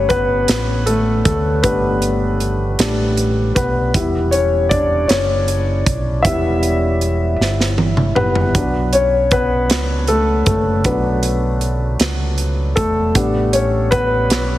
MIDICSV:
0, 0, Header, 1, 4, 480
1, 0, Start_track
1, 0, Key_signature, 2, "minor"
1, 0, Tempo, 768246
1, 1022, Time_signature, 6, 3, 24, 8
1, 9110, End_track
2, 0, Start_track
2, 0, Title_t, "Upright piano"
2, 0, Program_c, 0, 0
2, 0, Control_c, 0, 64, 127
2, 0, Note_on_c, 0, 55, 42
2, 0, Note_on_c, 0, 57, 40
2, 0, Note_on_c, 0, 59, 50
2, 0, Note_on_c, 0, 61, 56
2, 0, Note_on_c, 0, 62, 45
2, 0, Note_on_c, 0, 71, 82
2, 0, Note_on_c, 0, 73, 68
2, 55, Note_off_c, 0, 71, 0
2, 55, Note_on_c, 0, 71, 86
2, 69, Note_off_c, 0, 59, 0
2, 69, Note_on_c, 0, 59, 57
2, 279, Note_off_c, 0, 55, 0
2, 280, Note_off_c, 0, 57, 0
2, 282, Note_off_c, 0, 62, 0
2, 520, Note_off_c, 0, 59, 0
2, 539, Note_on_c, 0, 69, 65
2, 551, Note_on_c, 0, 57, 53
2, 553, Note_off_c, 0, 71, 0
2, 770, Note_off_c, 0, 57, 0
2, 772, Note_off_c, 0, 69, 0
2, 781, Note_on_c, 0, 69, 58
2, 797, Note_on_c, 0, 57, 44
2, 835, Note_off_c, 0, 69, 0
2, 849, Note_off_c, 0, 57, 0
2, 1017, Note_on_c, 0, 71, 67
2, 1023, Note_on_c, 0, 55, 41
2, 1025, Note_on_c, 0, 57, 41
2, 1031, Note_on_c, 0, 59, 52
2, 1031, Note_on_c, 0, 62, 50
2, 1737, Note_off_c, 0, 55, 0
2, 1739, Note_off_c, 0, 57, 0
2, 1741, Note_off_c, 0, 62, 0
2, 1747, Note_on_c, 0, 55, 38
2, 1748, Note_on_c, 0, 57, 34
2, 1751, Note_on_c, 0, 62, 42
2, 1954, Note_off_c, 0, 71, 0
2, 1960, Note_off_c, 0, 55, 0
2, 1961, Note_off_c, 0, 57, 0
2, 1961, Note_off_c, 0, 59, 0
2, 1962, Note_off_c, 0, 62, 0
2, 2220, Note_on_c, 0, 71, 64
2, 2233, Note_on_c, 0, 59, 43
2, 2459, Note_off_c, 0, 59, 0
2, 2465, Note_on_c, 0, 55, 42
2, 2469, Note_on_c, 0, 59, 35
2, 2470, Control_c, 0, 64, 0
2, 2472, Note_off_c, 0, 61, 0
2, 2472, Note_off_c, 0, 73, 0
2, 2472, Note_on_c, 0, 64, 46
2, 2579, Control_c, 0, 64, 127
2, 2676, Note_off_c, 0, 71, 0
2, 2694, Note_on_c, 0, 73, 63
2, 2714, Note_on_c, 0, 61, 53
2, 2782, Note_off_c, 0, 55, 0
2, 2784, Note_off_c, 0, 59, 0
2, 2786, Note_off_c, 0, 64, 0
2, 2931, Note_off_c, 0, 61, 0
2, 2932, Note_on_c, 0, 74, 67
2, 2945, Note_off_c, 0, 73, 0
2, 2956, Note_on_c, 0, 62, 50
2, 3160, Note_off_c, 0, 74, 0
2, 3172, Note_off_c, 0, 62, 0
2, 3173, Note_on_c, 0, 73, 68
2, 3196, Note_on_c, 0, 61, 51
2, 3872, Note_off_c, 0, 73, 0
2, 3883, Note_off_c, 0, 61, 0
2, 3889, Note_on_c, 0, 76, 68
2, 3904, Note_on_c, 0, 55, 42
2, 3908, Note_on_c, 0, 59, 38
2, 3912, Note_on_c, 0, 64, 52
2, 4597, Note_off_c, 0, 55, 0
2, 4599, Note_off_c, 0, 59, 0
2, 4830, Note_off_c, 0, 76, 0
2, 4842, Note_off_c, 0, 64, 0
2, 5094, Note_on_c, 0, 71, 69
2, 5099, Note_on_c, 0, 55, 33
2, 5103, Note_on_c, 0, 59, 51
2, 5105, Note_on_c, 0, 64, 37
2, 5315, Note_off_c, 0, 55, 0
2, 5319, Note_off_c, 0, 64, 0
2, 5334, Note_off_c, 0, 59, 0
2, 5338, Note_on_c, 0, 54, 40
2, 5343, Note_on_c, 0, 59, 37
2, 5347, Note_on_c, 0, 62, 44
2, 5349, Control_c, 0, 64, 0
2, 5443, Control_c, 0, 64, 127
2, 5579, Note_on_c, 0, 73, 74
2, 5587, Note_on_c, 0, 61, 55
2, 5591, Note_off_c, 0, 71, 0
2, 5658, Note_off_c, 0, 54, 0
2, 5661, Note_off_c, 0, 59, 0
2, 5663, Note_off_c, 0, 62, 0
2, 5807, Note_off_c, 0, 61, 0
2, 5819, Note_on_c, 0, 71, 79
2, 5827, Note_off_c, 0, 73, 0
2, 5830, Note_on_c, 0, 59, 58
2, 6279, Note_off_c, 0, 59, 0
2, 6300, Note_on_c, 0, 69, 67
2, 6308, Note_on_c, 0, 57, 52
2, 6313, Note_off_c, 0, 71, 0
2, 6527, Note_off_c, 0, 57, 0
2, 6531, Note_off_c, 0, 69, 0
2, 6540, Note_on_c, 0, 69, 62
2, 6548, Note_on_c, 0, 57, 50
2, 6594, Note_off_c, 0, 69, 0
2, 6601, Note_off_c, 0, 57, 0
2, 6779, Note_on_c, 0, 54, 40
2, 6779, Note_on_c, 0, 71, 58
2, 6782, Note_on_c, 0, 59, 51
2, 6787, Note_on_c, 0, 62, 49
2, 7712, Note_off_c, 0, 71, 0
2, 7718, Note_off_c, 0, 59, 0
2, 7971, Note_on_c, 0, 69, 73
2, 7986, Note_on_c, 0, 57, 54
2, 8192, Note_off_c, 0, 54, 0
2, 8196, Note_off_c, 0, 62, 0
2, 8217, Note_on_c, 0, 55, 45
2, 8220, Note_on_c, 0, 59, 38
2, 8225, Control_c, 0, 64, 0
2, 8225, Note_on_c, 0, 62, 47
2, 8316, Control_c, 0, 64, 127
2, 8436, Note_off_c, 0, 57, 0
2, 8454, Note_on_c, 0, 73, 61
2, 8468, Note_off_c, 0, 69, 0
2, 8468, Note_on_c, 0, 61, 52
2, 8685, Note_off_c, 0, 61, 0
2, 8690, Note_on_c, 0, 71, 86
2, 8693, Note_off_c, 0, 59, 0
2, 8702, Note_off_c, 0, 73, 0
2, 8702, Note_on_c, 0, 59, 60
2, 8911, Note_off_c, 0, 55, 0
2, 8914, Note_off_c, 0, 62, 0
2, 9110, Note_off_c, 0, 59, 0
2, 9110, Note_off_c, 0, 71, 0
2, 9110, End_track
3, 0, Start_track
3, 0, Title_t, "Fingered electric bass"
3, 0, Program_c, 1, 33
3, 0, Note_on_c, 1, 31, 66
3, 277, Note_off_c, 1, 31, 0
3, 301, Note_on_c, 1, 33, 70
3, 756, Note_off_c, 1, 33, 0
3, 783, Note_on_c, 1, 38, 67
3, 1008, Note_off_c, 1, 38, 0
3, 1021, Note_on_c, 1, 31, 70
3, 1716, Note_off_c, 1, 31, 0
3, 1742, Note_on_c, 1, 33, 77
3, 2196, Note_off_c, 1, 33, 0
3, 2224, Note_on_c, 1, 35, 60
3, 2449, Note_off_c, 1, 35, 0
3, 2463, Note_on_c, 1, 28, 78
3, 3157, Note_off_c, 1, 28, 0
3, 3183, Note_on_c, 1, 30, 73
3, 3637, Note_off_c, 1, 30, 0
3, 3664, Note_on_c, 1, 35, 68
3, 3888, Note_off_c, 1, 35, 0
3, 3901, Note_on_c, 1, 28, 77
3, 4596, Note_off_c, 1, 28, 0
3, 4622, Note_on_c, 1, 31, 67
3, 5076, Note_off_c, 1, 31, 0
3, 5099, Note_on_c, 1, 30, 59
3, 5340, Note_off_c, 1, 30, 0
3, 5340, Note_on_c, 1, 35, 70
3, 6060, Note_off_c, 1, 35, 0
3, 6060, Note_on_c, 1, 37, 70
3, 6514, Note_off_c, 1, 37, 0
3, 6539, Note_on_c, 1, 30, 72
3, 6764, Note_off_c, 1, 30, 0
3, 6778, Note_on_c, 1, 35, 66
3, 7472, Note_off_c, 1, 35, 0
3, 7495, Note_on_c, 1, 37, 69
3, 7951, Note_off_c, 1, 37, 0
3, 7978, Note_on_c, 1, 28, 64
3, 8203, Note_off_c, 1, 28, 0
3, 8218, Note_on_c, 1, 33, 84
3, 8935, Note_off_c, 1, 33, 0
3, 8935, Note_on_c, 1, 35, 76
3, 9110, Note_off_c, 1, 35, 0
3, 9110, End_track
4, 0, Start_track
4, 0, Title_t, "Drums"
4, 61, Note_on_c, 9, 42, 30
4, 64, Note_on_c, 9, 36, 62
4, 123, Note_off_c, 9, 42, 0
4, 126, Note_off_c, 9, 36, 0
4, 301, Note_on_c, 9, 42, 68
4, 308, Note_on_c, 9, 38, 86
4, 363, Note_off_c, 9, 42, 0
4, 371, Note_off_c, 9, 38, 0
4, 542, Note_on_c, 9, 42, 39
4, 604, Note_off_c, 9, 42, 0
4, 783, Note_on_c, 9, 36, 71
4, 783, Note_on_c, 9, 42, 43
4, 846, Note_off_c, 9, 36, 0
4, 846, Note_off_c, 9, 42, 0
4, 1022, Note_on_c, 9, 42, 58
4, 1023, Note_on_c, 9, 36, 76
4, 1084, Note_off_c, 9, 42, 0
4, 1085, Note_off_c, 9, 36, 0
4, 1261, Note_on_c, 9, 42, 40
4, 1324, Note_off_c, 9, 42, 0
4, 1502, Note_on_c, 9, 42, 32
4, 1564, Note_off_c, 9, 42, 0
4, 1743, Note_on_c, 9, 42, 68
4, 1750, Note_on_c, 9, 38, 90
4, 1805, Note_off_c, 9, 42, 0
4, 1812, Note_off_c, 9, 38, 0
4, 1983, Note_on_c, 9, 42, 40
4, 2045, Note_off_c, 9, 42, 0
4, 2225, Note_on_c, 9, 36, 66
4, 2226, Note_on_c, 9, 42, 40
4, 2287, Note_off_c, 9, 36, 0
4, 2289, Note_off_c, 9, 42, 0
4, 2464, Note_on_c, 9, 36, 77
4, 2465, Note_on_c, 9, 42, 57
4, 2526, Note_off_c, 9, 36, 0
4, 2527, Note_off_c, 9, 42, 0
4, 2702, Note_on_c, 9, 42, 42
4, 2764, Note_off_c, 9, 42, 0
4, 2943, Note_on_c, 9, 42, 34
4, 2944, Note_on_c, 9, 36, 61
4, 3005, Note_off_c, 9, 42, 0
4, 3006, Note_off_c, 9, 36, 0
4, 3182, Note_on_c, 9, 42, 61
4, 3190, Note_on_c, 9, 38, 86
4, 3245, Note_off_c, 9, 42, 0
4, 3252, Note_off_c, 9, 38, 0
4, 3423, Note_on_c, 9, 42, 39
4, 3485, Note_off_c, 9, 42, 0
4, 3664, Note_on_c, 9, 36, 72
4, 3665, Note_on_c, 9, 42, 44
4, 3727, Note_off_c, 9, 36, 0
4, 3728, Note_off_c, 9, 42, 0
4, 3903, Note_on_c, 9, 36, 84
4, 3904, Note_on_c, 9, 42, 61
4, 3966, Note_off_c, 9, 36, 0
4, 3967, Note_off_c, 9, 42, 0
4, 4141, Note_on_c, 9, 42, 41
4, 4204, Note_off_c, 9, 42, 0
4, 4382, Note_on_c, 9, 42, 33
4, 4444, Note_off_c, 9, 42, 0
4, 4632, Note_on_c, 9, 38, 45
4, 4695, Note_off_c, 9, 38, 0
4, 4751, Note_on_c, 9, 38, 44
4, 4814, Note_off_c, 9, 38, 0
4, 4861, Note_on_c, 9, 48, 53
4, 4923, Note_off_c, 9, 48, 0
4, 4980, Note_on_c, 9, 47, 60
4, 5043, Note_off_c, 9, 47, 0
4, 5100, Note_on_c, 9, 45, 75
4, 5162, Note_off_c, 9, 45, 0
4, 5220, Note_on_c, 9, 43, 66
4, 5282, Note_off_c, 9, 43, 0
4, 5340, Note_on_c, 9, 42, 56
4, 5341, Note_on_c, 9, 36, 76
4, 5403, Note_off_c, 9, 42, 0
4, 5404, Note_off_c, 9, 36, 0
4, 5577, Note_on_c, 9, 42, 46
4, 5640, Note_off_c, 9, 42, 0
4, 5816, Note_on_c, 9, 42, 29
4, 5820, Note_on_c, 9, 36, 62
4, 5879, Note_off_c, 9, 42, 0
4, 5883, Note_off_c, 9, 36, 0
4, 6059, Note_on_c, 9, 42, 60
4, 6066, Note_on_c, 9, 38, 87
4, 6121, Note_off_c, 9, 42, 0
4, 6129, Note_off_c, 9, 38, 0
4, 6295, Note_on_c, 9, 42, 41
4, 6357, Note_off_c, 9, 42, 0
4, 6536, Note_on_c, 9, 42, 43
4, 6539, Note_on_c, 9, 36, 73
4, 6599, Note_off_c, 9, 42, 0
4, 6601, Note_off_c, 9, 36, 0
4, 6776, Note_on_c, 9, 42, 58
4, 6778, Note_on_c, 9, 36, 82
4, 6838, Note_off_c, 9, 42, 0
4, 6840, Note_off_c, 9, 36, 0
4, 7015, Note_on_c, 9, 42, 46
4, 7078, Note_off_c, 9, 42, 0
4, 7254, Note_on_c, 9, 42, 32
4, 7317, Note_off_c, 9, 42, 0
4, 7495, Note_on_c, 9, 42, 62
4, 7502, Note_on_c, 9, 38, 84
4, 7557, Note_off_c, 9, 42, 0
4, 7565, Note_off_c, 9, 38, 0
4, 7733, Note_on_c, 9, 42, 35
4, 7796, Note_off_c, 9, 42, 0
4, 7976, Note_on_c, 9, 42, 41
4, 7978, Note_on_c, 9, 36, 77
4, 8039, Note_off_c, 9, 42, 0
4, 8040, Note_off_c, 9, 36, 0
4, 8217, Note_on_c, 9, 42, 62
4, 8218, Note_on_c, 9, 36, 76
4, 8279, Note_off_c, 9, 42, 0
4, 8280, Note_off_c, 9, 36, 0
4, 8454, Note_on_c, 9, 42, 46
4, 8517, Note_off_c, 9, 42, 0
4, 8696, Note_on_c, 9, 42, 32
4, 8698, Note_on_c, 9, 36, 67
4, 8758, Note_off_c, 9, 42, 0
4, 8760, Note_off_c, 9, 36, 0
4, 8936, Note_on_c, 9, 42, 66
4, 8944, Note_on_c, 9, 38, 84
4, 8998, Note_off_c, 9, 42, 0
4, 9006, Note_off_c, 9, 38, 0
4, 9110, End_track
0, 0, End_of_file